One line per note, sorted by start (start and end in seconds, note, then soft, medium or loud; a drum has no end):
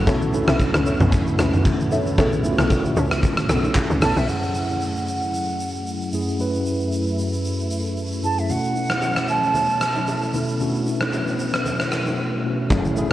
0.07 0.46 B1 loud
0.07 0.29 A3 loud
0.07 4.24 A3 medium
0.07 4.24 B3 medium
0.07 0.29 C#4 medium
0.07 4.24 E4 medium
0.07 0.30 E4 medium
0.07 0.30 F#4 loud
0.07 0.45 A4 loud
0.07 0.45 C#5 medium
0.07 0.45 E5 loud
0.07 kick loud
0.07 low conga medium
0.07 shaker medium
0.22 shaker medium
0.33 1.18 A3 loud
0.33 1.19 C#4 medium
0.33 0.41 D4 medium
0.33 1.19 A4 loud
0.33 low bongo soft
0.33 shaker loud
0.41 1.22 E4 medium
0.48 0.73 B1 loud
0.48 0.57 A4 medium
0.48 0.57 C#5 medium
0.48 0.57 E5 medium
0.48 cross-stick loud
0.48 high bongo medium
0.48 shaker medium
0.60 kick medium
0.60 high bongo medium
0.60 shaker medium
0.74 0.99 C#2 loud
0.74 cross-stick loud
0.74 shaker medium
0.86 0.97 A4 medium
0.86 0.97 C#5 medium
0.86 0.98 E5 medium
0.86 shaker medium
1.01 1.37 B1 medium
1.01 mid tom loud
1.01 shaker medium
1.12 kick loud
1.12 low conga medium
1.12 shaker medium
1.27 shaker medium
1.39 1.64 C#2 loud
1.39 2.03 A3 medium
1.39 2.03 C#4 medium
1.39 2.04 E4 medium
1.39 2.04 F#4 medium
1.39 cross-stick loud
1.39 shaker loud
1.53 mid tom medium
1.53 low bongo medium
1.53 shaker soft
1.65 kick loud
1.65 high bongo medium
1.65 shaker medium
1.80 shaker medium
1.91 2.16 A4 medium
1.91 2.16 C#5 medium
1.91 2.16 E5 medium
1.91 high bongo medium
1.91 low bongo medium
1.91 low conga medium
1.91 shaker loud
2.06 shaker medium
2.18 2.56 B1 loud
2.18 2.39 A3 medium
2.18 2.40 C#4 medium
2.18 2.40 E4 medium
2.18 2.40 G#4 loud
2.18 2.55 A4 loud
2.18 2.55 C#5 medium
2.18 2.55 E5 loud
2.18 kick loud
2.18 low conga medium
2.18 shaker medium
2.32 shaker medium
2.44 3.29 A3 loud
2.44 3.29 C#4 medium
2.44 3.30 E4 medium
2.44 2.52 F4 medium
2.44 low bongo soft
2.44 shaker loud
2.52 3.33 F#4 loud
2.58 2.95 B1 medium
2.58 2.68 A4 medium
2.58 2.68 C#5 medium
2.58 2.68 E5 medium
2.58 cross-stick loud
2.58 high bongo medium
2.58 low bongo medium
2.58 shaker medium
2.70 kick loud
2.70 high bongo medium
2.70 shaker medium
2.85 shaker medium
2.96 3.35 C#2 loud
2.96 3.08 A4 medium
2.96 3.08 C#5 medium
2.96 3.08 E5 medium
2.96 shaker medium
3.11 cross-stick loud
3.11 shaker medium
3.23 kick loud
3.23 low conga medium
3.23 shaker medium
3.37 cross-stick loud
3.37 shaker medium
3.49 3.74 B1 medium
3.49 4.13 A3 medium
3.49 4.14 C#4 medium
3.49 4.14 E4 medium
3.49 4.15 A4 medium
3.49 cross-stick medium
3.49 shaker loud
3.64 low bongo medium
3.64 shaker soft
3.75 kick loud
3.75 clap loud
3.75 high bongo medium
3.75 shaker medium
3.90 4.01 C#2 medium
3.90 shaker medium
4.02 4.16 B1 medium
4.02 4.26 A4 medium
4.02 4.26 C#5 medium
4.02 4.27 E5 medium
4.02 4.19 A5 loud
4.02 cross-stick loud
4.02 open hi-hat medium
4.02 high bongo medium
4.02 low bongo medium
4.02 low conga medium
4.02 shaker loud
4.17 4.28 B1 medium
4.17 4.31 E5 loud
4.17 shaker medium
4.28 5.13 F#2 medium
4.28 8.45 F#2 medium
4.28 8.45 F#3 medium
4.28 4.35 G#3 medium
4.28 12.66 A3 medium
4.28 5.14 C#4 medium
4.28 12.67 E4 medium
4.28 5.14 E4 medium
4.28 5.14 G#4 medium
4.28 5.08 F#5 medium
4.28 shaker medium
4.35 5.16 A3 medium
4.43 shaker soft
4.55 shaker medium
4.69 shaker soft
4.81 shaker medium
4.96 shaker soft
5.07 6.09 F#5 medium
5.07 shaker medium
5.22 shaker medium
5.34 shaker medium
5.48 shaker soft
5.60 shaker medium
5.75 shaker soft
5.86 shaker medium
6.01 shaker soft
6.12 6.34 F#2 medium
6.12 6.34 A3 medium
6.12 6.35 C#4 medium
6.12 6.35 E4 medium
6.12 6.35 G#4 medium
6.12 shaker loud
6.27 shaker medium
6.39 7.23 F#2 medium
6.39 7.24 A3 medium
6.39 7.24 C#4 medium
6.39 7.24 E4 medium
6.39 7.25 B4 medium
6.39 shaker medium
6.54 shaker soft
6.65 shaker medium
6.80 shaker soft
6.92 shaker medium
7.06 shaker soft
7.18 shaker medium
7.33 shaker medium
7.44 shaker medium
7.59 shaker soft
7.70 shaker medium
7.85 shaker soft
7.97 shaker medium
8.12 shaker soft
8.23 8.45 F#2 medium
8.23 8.45 A3 medium
8.23 8.45 C#4 medium
8.23 8.45 E4 medium
8.23 8.46 G#4 medium
8.23 8.40 A5 loud
8.23 shaker medium
8.38 8.52 E5 medium
8.38 shaker medium
8.49 9.34 B2 medium
8.49 12.67 B2 medium
8.49 9.34 A3 medium
8.49 10.58 C#4 medium
8.49 9.35 C#4 medium
8.49 9.35 E4 medium
8.49 9.35 F#4 medium
8.49 9.29 F#5 loud
8.49 low conga medium
8.49 shaker medium
8.64 shaker soft
8.76 low bongo soft
8.76 shaker loud
8.90 cross-stick medium
8.90 low bongo medium
8.90 shaker soft
9.02 high bongo medium
9.02 shaker medium
9.17 cross-stick medium
9.17 shaker soft
9.28 10.30 A5 loud
9.28 shaker medium
9.43 shaker medium
9.54 low conga medium
9.54 shaker medium
9.69 shaker medium
9.81 cross-stick medium
9.81 shaker medium
9.96 low bongo medium
9.96 shaker soft
10.07 high bongo medium
10.07 shaker medium
10.22 shaker soft
10.33 10.55 B2 medium
10.33 10.55 A3 medium
10.33 10.56 C#4 medium
10.33 10.56 E4 medium
10.33 10.56 A4 medium
10.33 low bongo medium
10.33 low conga medium
10.33 shaker loud
10.48 shaker medium
10.60 11.44 B2 medium
10.60 11.45 A3 medium
10.60 12.68 B3 medium
10.60 11.45 C#4 medium
10.60 10.68 D4 medium
10.60 11.46 F#4 loud
10.60 low conga medium
10.60 shaker medium
10.68 11.49 E4 medium
10.74 shaker soft
10.86 low bongo soft
10.86 shaker medium
11.01 cross-stick loud
11.01 low bongo medium
11.01 shaker soft
11.12 high bongo medium
11.12 shaker medium
11.27 shaker medium
11.39 shaker medium
11.54 cross-stick loud
11.54 shaker medium
11.65 low conga medium
11.65 shaker medium
11.79 cross-stick medium
11.79 shaker medium
11.91 cross-stick medium
11.91 shaker medium
12.06 low bongo medium
12.06 shaker soft
12.44 12.66 B2 medium
12.44 12.66 A3 medium
12.44 12.66 C#4 medium
12.44 12.66 E4 medium
12.44 12.67 F#4 medium
12.70 13.09 F#1 loud
12.70 13.13 F#3 medium
12.70 12.92 A3 medium
12.70 13.13 A3 medium
12.70 13.13 C#4 medium
12.70 12.92 C#4 medium
12.70 13.13 E4 medium
12.70 12.93 E4 medium
12.70 12.93 G#4 loud
12.70 kick loud
12.70 low conga medium
12.70 shaker medium
12.85 shaker medium
12.96 13.13 A3 medium
12.96 13.13 C#4 medium
12.96 13.13 E4 medium
12.96 13.13 G#4 loud
12.96 low bongo soft
12.96 shaker loud